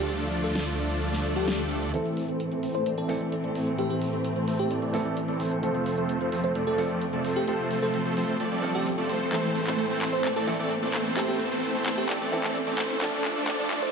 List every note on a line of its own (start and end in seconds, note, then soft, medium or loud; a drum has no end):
0.00 1.92 D2 medium
0.00 1.90 D3 medium
0.00 1.90 F3 medium
0.00 1.91 F3 medium
0.00 1.91 A3 medium
0.00 1.91 D4 medium
0.00 1.90 F4 medium
0.00 1.91 A4 medium
0.00 1.92 A4 medium
0.00 1.91 D5 medium
0.09 1.92 G3 medium
0.09 0.17 G4 medium
0.09 closed hi-hat medium
0.21 closed hi-hat soft
0.32 closed hi-hat medium
0.44 0.58 A4 medium
0.44 closed hi-hat soft
0.55 snare loud
0.55 closed hi-hat medium
0.67 closed hi-hat soft
0.79 closed hi-hat soft
0.90 closed hi-hat soft
1.02 closed hi-hat medium
1.02 swell medium
1.13 snare soft
1.13 closed hi-hat soft
1.25 closed hi-hat medium
1.36 1.82 G4 medium
1.36 closed hi-hat soft
1.48 snare loud
1.48 closed hi-hat medium
1.59 closed hi-hat soft
1.71 closed hi-hat medium
1.82 closed hi-hat soft
1.93 5.59 A2 medium
1.93 3.06 E3 medium
1.93 2.26 E3 medium
1.93 5.59 E3 medium
1.93 3.06 A3 medium
1.93 2.26 A3 medium
1.93 2.26 C4 medium
1.93 5.59 C4 medium
1.93 3.07 C4 medium
1.93 2.26 A4 medium
1.93 3.07 A4 medium
1.93 2.26 C5 loud
1.93 closed hi-hat medium
1.93 riser medium
2.06 closed hi-hat soft
2.17 open hi-hat loud
2.28 2.49 E3 medium
2.28 2.49 A3 medium
2.28 2.49 C4 medium
2.28 2.49 A4 medium
2.28 2.49 C5 loud
2.28 closed hi-hat soft
2.40 closed hi-hat medium
2.51 2.60 E3 loud
2.51 2.60 A3 medium
2.51 2.60 C4 medium
2.51 2.60 A4 medium
2.51 2.60 C5 loud
2.51 closed hi-hat soft
2.63 2.83 E3 medium
2.63 2.83 A3 medium
2.63 2.83 C4 medium
2.63 2.83 A4 medium
2.63 2.83 C5 loud
2.63 open hi-hat loud
2.75 2.89 C5 medium
2.75 closed hi-hat soft
2.86 2.95 E3 medium
2.86 2.95 A3 medium
2.86 2.95 C4 medium
2.86 2.95 A4 medium
2.86 2.95 D5 medium
2.86 closed hi-hat loud
2.98 3.18 E3 medium
2.98 3.18 A3 medium
2.98 3.18 C4 medium
2.98 3.18 A4 medium
2.98 3.12 A4 medium
2.98 3.18 D5 loud
2.98 closed hi-hat soft
3.08 3.18 E3 medium
3.08 3.18 A3 medium
3.08 3.19 C4 medium
3.08 3.19 A4 loud
3.08 open hi-hat loud
3.21 3.34 E3 medium
3.21 3.34 A3 medium
3.21 3.34 C4 medium
3.21 3.34 A4 medium
3.21 3.34 D5 loud
3.21 closed hi-hat soft
3.32 closed hi-hat medium
3.44 3.54 E3 medium
3.44 3.54 A3 medium
3.44 3.54 C4 medium
3.44 3.54 A4 medium
3.44 3.54 D5 medium
3.44 closed hi-hat soft
3.55 3.76 E3 medium
3.55 3.76 A3 medium
3.55 3.76 C4 medium
3.55 3.76 A4 medium
3.55 3.76 C5 medium
3.55 open hi-hat loud
3.67 closed hi-hat soft
3.77 4.90 E3 medium
3.77 4.10 E3 medium
3.77 4.91 A3 medium
3.77 4.10 A3 medium
3.77 4.10 C4 medium
3.77 4.91 C4 medium
3.77 3.86 G4 medium
3.77 4.10 A4 medium
3.77 4.92 A4 medium
3.77 4.10 C5 loud
3.77 closed hi-hat medium
3.90 3.97 G4 medium
3.90 closed hi-hat soft
4.02 open hi-hat loud
4.13 4.33 E3 loud
4.13 4.33 A3 medium
4.13 4.33 C4 medium
4.13 4.33 A4 medium
4.13 4.33 C5 loud
4.13 closed hi-hat soft
4.25 closed hi-hat medium
4.36 4.45 E3 loud
4.36 4.45 A3 medium
4.36 4.45 C4 medium
4.36 4.45 A4 medium
4.36 4.45 C5 loud
4.36 closed hi-hat soft
4.48 4.68 E3 medium
4.48 4.68 A3 medium
4.48 4.68 C4 medium
4.48 4.68 A4 medium
4.48 4.68 C5 loud
4.48 open hi-hat loud
4.59 5.05 G4 medium
4.59 closed hi-hat soft
4.71 4.79 E3 medium
4.71 4.79 A3 medium
4.71 4.80 C4 medium
4.71 4.79 A4 medium
4.71 4.80 D5 medium
4.71 closed hi-hat medium
4.82 5.03 E3 medium
4.82 5.03 A3 medium
4.82 5.03 C4 medium
4.82 5.03 A4 medium
4.82 5.03 D5 loud
4.82 closed hi-hat soft
4.93 5.03 E3 loud
4.93 5.03 A3 medium
4.93 5.03 C4 medium
4.93 5.03 A4 loud
4.93 open hi-hat loud
5.05 5.19 E3 medium
5.05 5.19 A3 medium
5.05 5.19 C4 medium
5.05 5.19 A4 medium
5.05 5.19 D5 loud
5.05 closed hi-hat soft
5.17 closed hi-hat medium
5.28 5.38 E3 medium
5.28 5.38 A3 medium
5.28 5.38 C4 medium
5.28 5.38 A4 medium
5.28 5.38 D5 loud
5.28 closed hi-hat soft
5.40 5.60 E3 medium
5.40 5.60 A3 medium
5.40 5.60 C4 medium
5.40 5.60 A4 medium
5.40 5.60 C5 medium
5.40 open hi-hat loud
5.52 closed hi-hat soft
5.62 9.29 F2 medium
5.62 9.29 C3 medium
5.62 6.75 F3 medium
5.62 5.95 F3 medium
5.62 6.75 A3 medium
5.62 5.95 A3 medium
5.62 9.29 A3 medium
5.62 5.95 C4 medium
5.62 6.76 C4 medium
5.62 5.95 A4 medium
5.62 6.76 A4 medium
5.62 5.95 C5 loud
5.62 closed hi-hat medium
5.75 closed hi-hat soft
5.86 open hi-hat loud
5.98 6.18 F3 loud
5.98 6.18 A3 medium
5.98 6.18 C4 medium
5.98 6.18 A4 medium
5.98 6.18 C5 loud
5.98 closed hi-hat soft
6.09 closed hi-hat medium
6.21 6.30 F3 loud
6.21 6.30 A3 medium
6.21 6.29 C4 medium
6.21 6.29 A4 medium
6.21 6.30 C5 loud
6.21 closed hi-hat soft
6.32 6.53 F3 medium
6.32 6.53 A3 medium
6.32 6.53 C4 medium
6.32 6.53 A4 medium
6.32 6.53 C5 loud
6.32 open hi-hat loud
6.44 6.58 C5 medium
6.44 closed hi-hat soft
6.55 6.64 F3 medium
6.55 6.64 A3 medium
6.55 6.64 C4 medium
6.55 6.64 A4 medium
6.55 6.64 D5 medium
6.55 closed hi-hat medium
6.67 6.87 F3 medium
6.67 6.87 A3 medium
6.67 6.87 C4 medium
6.67 6.87 A4 medium
6.67 6.81 A4 medium
6.67 6.87 D5 loud
6.67 closed hi-hat soft
6.78 6.87 F3 loud
6.78 6.88 A3 medium
6.78 6.88 C4 medium
6.78 6.88 A4 loud
6.78 open hi-hat loud
6.90 7.03 F3 medium
6.90 7.03 A3 medium
6.90 7.03 C4 medium
6.90 7.03 A4 medium
6.90 7.03 D5 loud
6.90 closed hi-hat soft
7.02 closed hi-hat medium
7.13 7.23 F3 medium
7.13 7.23 A3 medium
7.13 7.23 C4 medium
7.13 7.23 A4 medium
7.13 7.23 D5 loud
7.13 closed hi-hat soft
7.25 7.45 F3 medium
7.25 7.45 A3 medium
7.25 7.45 C4 medium
7.25 7.45 A4 medium
7.25 7.45 C5 medium
7.25 open hi-hat loud
7.36 7.44 G4 medium
7.36 closed hi-hat soft
7.46 8.60 F3 medium
7.46 7.80 F3 medium
7.46 8.60 A3 medium
7.46 7.80 A3 medium
7.46 7.80 C4 medium
7.46 8.60 C4 medium
7.46 7.55 G4 medium
7.46 7.80 A4 medium
7.46 8.61 A4 medium
7.46 7.80 C5 loud
7.46 closed hi-hat medium
7.59 closed hi-hat soft
7.71 open hi-hat loud
7.82 8.03 F3 loud
7.82 8.03 A3 medium
7.82 8.03 C4 medium
7.82 7.97 A4 medium
7.82 8.03 A4 medium
7.82 8.03 C5 loud
7.82 closed hi-hat soft
7.94 closed hi-hat medium
8.05 8.14 F3 loud
8.05 8.14 A3 medium
8.05 8.14 C4 medium
8.05 8.14 A4 medium
8.05 8.14 C5 loud
8.05 closed hi-hat soft
8.17 8.37 F3 medium
8.17 8.37 A3 medium
8.17 8.37 C4 medium
8.17 8.37 A4 medium
8.17 8.37 C5 loud
8.17 open hi-hat loud
8.29 closed hi-hat soft
8.40 8.49 F3 medium
8.40 8.49 A3 medium
8.40 8.49 C4 medium
8.40 8.49 A4 medium
8.40 8.49 D5 medium
8.40 closed hi-hat medium
8.52 8.72 F3 medium
8.52 8.72 A3 medium
8.52 8.72 C4 medium
8.52 8.72 A4 medium
8.52 8.72 D5 loud
8.52 closed hi-hat soft
8.63 8.72 F3 loud
8.63 8.72 A3 medium
8.63 8.72 C4 medium
8.63 8.73 A4 loud
8.63 open hi-hat loud
8.75 8.88 F3 medium
8.75 8.88 A3 medium
8.75 8.88 C4 medium
8.75 9.21 G4 medium
8.75 8.88 A4 medium
8.75 8.88 D5 loud
8.75 closed hi-hat soft
8.86 closed hi-hat medium
8.98 9.08 F3 medium
8.98 9.08 A3 medium
8.98 9.08 C4 medium
8.98 9.08 A4 medium
8.98 9.08 D5 loud
8.98 closed hi-hat soft
9.09 9.30 F3 medium
9.09 9.30 A3 medium
9.09 9.30 C4 medium
9.09 9.30 A4 medium
9.09 9.30 C5 medium
9.09 open hi-hat loud
9.21 closed hi-hat soft
9.31 13.92 A2 medium
9.31 10.44 E3 medium
9.31 12.98 E3 medium
9.31 9.64 E3 medium
9.31 10.45 A3 medium
9.31 9.64 A3 medium
9.31 12.98 C4 medium
9.31 9.64 C4 medium
9.31 10.45 C4 medium
9.31 9.64 A4 medium
9.31 10.46 A4 medium
9.31 9.64 C5 loud
9.31 clap soft
9.31 closed hi-hat medium
9.44 closed hi-hat soft
9.56 open hi-hat loud
9.67 9.87 E3 loud
9.67 9.87 A3 medium
9.67 9.87 C4 medium
9.67 9.87 A4 medium
9.67 9.87 C5 loud
9.67 clap soft
9.67 closed hi-hat soft
9.79 closed hi-hat medium
9.90 9.99 E3 loud
9.90 9.99 A3 medium
9.90 9.99 C4 medium
9.90 9.99 A4 medium
9.90 9.99 C5 loud
9.90 closed hi-hat soft
10.02 10.22 E3 loud
10.02 10.22 A3 medium
10.02 10.22 C4 medium
10.02 10.22 A4 medium
10.02 10.22 C5 loud
10.02 clap medium
10.02 open hi-hat loud
10.13 10.28 C5 medium
10.13 closed hi-hat soft
10.25 10.33 E3 medium
10.25 10.33 A3 medium
10.25 10.33 C4 medium
10.25 10.33 A4 medium
10.25 10.33 D5 medium
10.25 clap medium
10.25 closed hi-hat medium
10.36 10.56 E3 medium
10.36 10.56 A3 medium
10.36 10.56 C4 medium
10.36 10.56 A4 medium
10.36 10.51 A4 medium
10.36 10.56 D5 loud
10.36 closed hi-hat soft
10.47 10.57 E3 loud
10.47 10.57 A3 medium
10.47 10.57 C4 medium
10.47 10.57 A4 loud
10.47 open hi-hat loud
10.59 10.73 E3 medium
10.59 10.73 A3 medium
10.59 10.73 C4 medium
10.59 10.73 A4 medium
10.59 10.73 D5 loud
10.71 closed hi-hat medium
10.82 10.92 E3 medium
10.82 10.92 A3 medium
10.82 10.92 C4 medium
10.82 10.92 A4 medium
10.82 10.92 D5 medium
10.82 closed hi-hat soft
10.94 11.14 E3 medium
10.94 11.14 A3 medium
10.94 11.14 C4 medium
10.94 11.14 A4 medium
10.94 11.14 C5 medium
10.94 clap medium
10.94 open hi-hat loud
11.06 closed hi-hat soft
11.16 12.29 E3 medium
11.16 11.49 E3 medium
11.16 12.29 A3 medium
11.16 11.49 A3 medium
11.16 11.49 C4 medium
11.16 12.30 C4 medium
11.16 11.24 G4 medium
11.16 11.49 A4 medium
11.16 12.30 A4 medium
11.16 11.49 C5 loud
11.16 clap medium
11.16 closed hi-hat medium
11.28 11.36 G4 medium
11.28 closed hi-hat soft
11.40 open hi-hat loud
11.51 11.72 E3 loud
11.51 11.72 A3 medium
11.51 11.72 C4 medium
11.51 11.72 A4 medium
11.51 11.72 C5 loud
11.51 closed hi-hat soft
11.63 closed hi-hat medium
11.75 11.83 E3 loud
11.75 11.83 A3 medium
11.75 11.83 C4 medium
11.75 11.83 A4 medium
11.75 11.83 C5 loud
11.75 closed hi-hat soft
11.86 12.06 E3 medium
11.86 12.06 A3 medium
11.86 12.06 C4 medium
11.86 12.06 A4 medium
11.86 12.06 C5 loud
11.86 clap medium
11.86 open hi-hat loud
11.98 12.44 G4 medium
11.98 closed hi-hat soft
12.09 12.18 E3 medium
12.09 12.18 A3 medium
12.09 12.18 C4 medium
12.09 12.18 A4 medium
12.09 12.18 D5 medium
12.09 clap medium
12.09 closed hi-hat medium
12.21 12.41 E3 loud
12.21 12.41 A3 medium
12.21 12.41 C4 medium
12.21 12.41 A4 medium
12.21 12.41 D5 loud
12.21 closed hi-hat soft
12.32 12.41 E3 loud
12.32 12.41 A3 medium
12.32 12.42 C4 medium
12.32 12.42 A4 loud
12.32 open hi-hat loud
12.44 12.57 E3 medium
12.44 12.57 A3 medium
12.44 12.57 C4 medium
12.44 12.57 A4 medium
12.44 12.57 D5 loud
12.44 clap medium
12.44 closed hi-hat soft
12.55 closed hi-hat medium
12.67 12.77 E3 medium
12.67 12.77 A3 medium
12.67 12.77 C4 medium
12.67 12.77 A4 medium
12.67 12.77 D5 loud
12.67 closed hi-hat soft
12.78 12.99 E3 medium
12.78 12.99 A3 medium
12.78 12.99 C4 medium
12.78 12.99 A4 medium
12.78 12.99 C5 medium
12.78 clap medium
12.78 open hi-hat loud
12.90 closed hi-hat soft
13.00 13.92 D2 medium
13.00 13.92 F3 medium
13.00 13.33 F3 medium
13.00 13.92 F3 medium
13.00 13.92 A3 medium
13.00 13.33 A3 medium
13.00 13.33 D4 medium
13.00 13.92 D4 medium
13.00 13.33 A4 medium
13.00 13.92 A4 medium
13.00 13.33 D5 loud
13.00 clap medium
13.00 closed hi-hat medium
13.13 closed hi-hat soft
13.25 clap medium
13.25 open hi-hat loud
13.36 13.56 F3 loud
13.36 13.56 A3 medium
13.36 13.56 D4 medium
13.36 13.56 A4 medium
13.36 13.56 D5 loud
13.36 closed hi-hat soft
13.48 clap medium
13.48 closed hi-hat loud
13.59 13.68 F3 loud
13.59 13.68 A3 medium
13.59 13.68 D4 medium
13.59 13.68 A4 medium
13.59 13.68 D5 loud
13.59 closed hi-hat soft
13.71 13.91 F3 medium
13.71 13.91 A3 medium
13.71 13.91 D4 medium
13.71 13.91 A4 medium
13.71 13.91 D5 loud
13.71 clap medium
13.71 open hi-hat loud
13.82 13.92 C5 medium
13.82 closed hi-hat soft